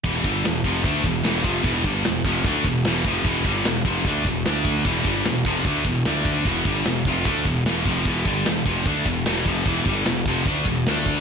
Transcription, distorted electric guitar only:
X:1
M:4/4
L:1/8
Q:1/4=150
K:Em
V:1 name="Distorted electric guitar" clef=bass
[E,,B,,E,] [G,,D,G,] [E,,B,,] [=F,,C,=F,] [D,A,D] [E,,B,,] [E,,B,,E,] [F,,C,F,] | [E,,B,,E,] [G,,D,G,] [E,,B,,] [=F,,C,=F,] [D,A,D] [E,,B,,] [E,,B,,E,] [F,,C,F,] | [E,,B,,E,] [G,,D,G,] [E,,B,,] [=F,,C,=F,] [D,A,D] [E,,B,,] [D,A,D]2 | [E,,B,,E,] [G,,D,G,] [E,,B,,] [=F,,C,=F,] [D,A,D] [E,,B,,] [D,A,D]2 |
[E,,B,,E,] [G,,D,G,] [E,,B,,] [=F,,C,=F,] [D,A,D] [E,,B,,] [E,,B,,E,] [F,,C,F,] | [E,,B,,E,] [G,,D,G,] [E,,B,,] [=F,,C,=F,] [D,A,D] [E,,B,,] [E,,B,,E,] [F,,C,F,] | [E,,B,,E,] [G,,D,G,] [E,,B,,] [=F,,C,=F,] [D,A,D] [E,,B,,] [D,A,D]2 |]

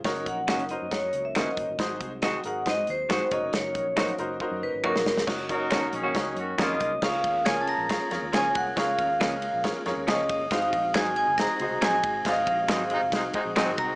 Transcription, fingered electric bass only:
X:1
M:4/4
L:1/16
Q:1/4=138
K:Db
V:1 name="Fingered electric bass" clef=bass
G,,,2 B,,,2 G,,,3 G,, G,,2 D,,2 G,,, z G,,, =G,,, | A,,,2 C,,4 A,,,2 A,,2 E,,2 G,, z G,,, F,,, | G,,,2 B,,,4 G,,,2 z G,, G,,, A,,,2 B,,, F,,,2 | G,,,6 B,,,2 D,,2 G,,2 F,,2 C,,2 |
D,,2 E,,2 D,,3 B,,,2 z F,, E,, D,,2 C,,2 | D,,2 E,,2 D,,3 B,,,2 z F,, E,, D,,2 =G,,,2 | A,,,2 B,,,2 A,,,3 G,,,2 z D,, C,, B,,,2 A,,,2 | A,,,2 B,,,2 A,,,3 F,,, C,,2 z B,,,2 A,,, C,,2 |]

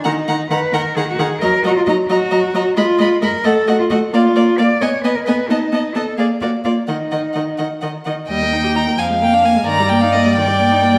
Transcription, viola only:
X:1
M:6/8
L:1/16
Q:3/8=88
K:Ebm
V:1 name="Viola" clef=bass
E,2 E,2 E,2 E,2 E,2 E,2 | G,2 G,2 G,2 G,2 G,2 G,2 | A,2 A,2 A,2 =A,2 A,2 A,2 | B,2 B,2 B,2 C2 C2 C2 |
=B,2 B,2 B,2 _B,2 B,2 B,2 | E,2 E,2 E,2 E,2 E,2 E,2 | [K:Eb] G, B, E G E B, F, A, B, D B, A, | E, G, B, E B, G, E, G, B, E B, G, |]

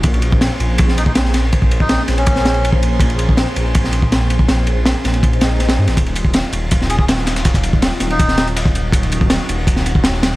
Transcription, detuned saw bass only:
X:1
M:4/4
L:1/16
Q:1/4=162
K:Ebm
V:1 name="Detuned saw bass" clef=bass
B,,,4- B,,, z B,,,8- B,,,2 | B,,,4- B,,, z B,,,8- B,,,2 | B,,,4- B,,, z B,,,8- B,,,2 | B,,,4- B,,, z B,,,8 =G,, B,,, |
E,,,4- E,,, z E,,,8- E,,,2 | E,,,4- E,,, z E,,,8- E,,,2 | E,,,4- E,,, z E,,,8- E,,,2 |]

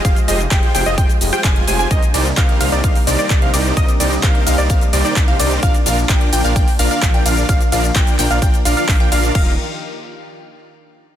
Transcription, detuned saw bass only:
X:1
M:4/4
L:1/16
Q:1/4=129
K:Eb
V:1 name="Detuned saw bass" clef=bass
F,,, z F,,,2 F,,, z F,,, F,,, F,,, z F,,, z F,,,2 F,,,2 | C,, z C,,2 C,, z C,, C,, C,, z C,, z C,,2 C,,2 | C,, z C,,2 C,, z C,, C,, C,, z C,, z C,,2 C,,2 | B,,, z B,,,2 B,,, z B,,, B,,, B,,, z B,,, z B,,,2 B,,,2 |
B,,, z B,,,2 B,,, z B,,, B,,, B,,, z B,,, z B,,,2 B,,,2 | E,,,2 z12 z2 |]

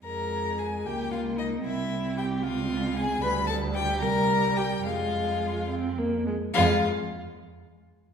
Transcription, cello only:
X:1
M:6/8
L:1/8
Q:3/8=73
K:Fm
V:1 name="Cello" clef=bass
F,,3 D,,3 | C,,3 D,,3 | =D,,3 C,,3 | F,,4- F,, z |
F,, z4 z |]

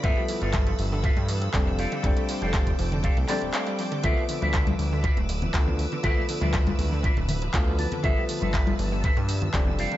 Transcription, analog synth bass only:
X:1
M:4/4
L:1/16
Q:1/4=120
K:Gmix
V:1 name="Analog synth bass" clef=bass
G,,, z2 G,,,3 G,,,3 G,,3 F,,,3 z | F,,, z2 F,,,3 F,,,3 C,, z D,,, z4 | D,, z2 D,,3 D,,3 D,,,3 D,,3 z | D,, z2 D,,3 D,,3 D,,,3 D,,3 z |
G,,, z2 G,,,3 G,,,3 G,,3 F,,,3 z |]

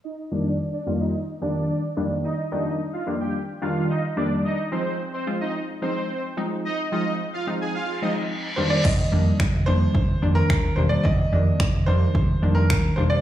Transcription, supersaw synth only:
X:1
M:4/4
L:1/16
Q:1/4=109
K:Eb
V:1 name="Supersaw synth"
[Ee]2 [Dd]2 z [Dd] z [Ee] z2 [Dd]3 z3 | [Ee]2 [Ee]2 z [Ff] z [Gg] z2 [Ff]2 [Ee] z [Dd] z | [Ee]2 [Cc]2 z [Cc] z [Ee] z2 [Cc]3 z3 | [Ee]2 [Ee]2 z [Ff] z [Aa] [Ff]2 [Ee] z4 z |
z16 | z16 |]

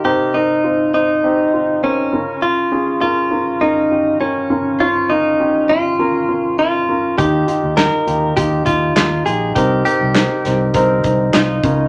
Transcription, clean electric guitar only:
X:1
M:4/4
L:1/8
Q:1/4=101
K:Cphr
V:1 name="Clean electric guitar"
G E2 E3 D2 | F2 F2 E2 D2 | F E2 F3 F2 | G2 B2 G F F A |
G G4- G E2 |]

